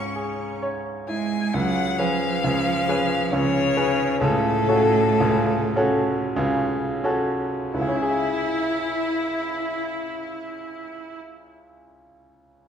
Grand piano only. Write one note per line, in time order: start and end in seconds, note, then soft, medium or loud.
0.00 1.50 C#2 medium
0.00 0.43 G#2 medium
0.00 0.16 G#4 medium
0.16 0.90 G#4 medium
0.62 1.36 C#5 medium
1.09 1.54 E4 medium
1.54 1.97 C#2 medium
1.54 1.97 C#3 medium
1.98 2.39 C#4 soft
1.98 2.40 G#4 medium
1.98 2.40 B4 medium
2.44 2.87 C#2 medium
2.44 2.87 C#3 medium
2.88 3.29 C#4 medium
2.88 3.29 G#4 medium
2.88 3.29 B4 medium
3.33 3.76 C#2 medium
3.33 3.76 C#3 medium
3.77 4.18 C#4 medium
3.77 4.18 G#4 medium
3.77 4.18 B4 medium
4.21 4.67 C#2 medium
4.21 4.67 C#3 medium
4.68 5.16 C#4 medium
4.68 5.17 F#4 medium
4.68 5.17 A4 medium
5.20 5.75 C#2 medium
5.20 5.75 C#3 medium
5.76 6.32 C#4 medium
5.76 6.33 F#4 medium
5.76 6.33 A4 medium
6.36 7.02 C#2 medium
6.36 7.02 C#3 medium
7.04 7.70 C#4 medium
7.04 7.70 F#4 medium
7.04 7.71 A4 medium
7.74 11.17 C#2 medium
7.81 11.24 C#3 medium
7.88 11.31 C#4 medium
7.95 11.38 E4 medium
8.02 11.45 G#4 medium
8.09 11.52 E5 medium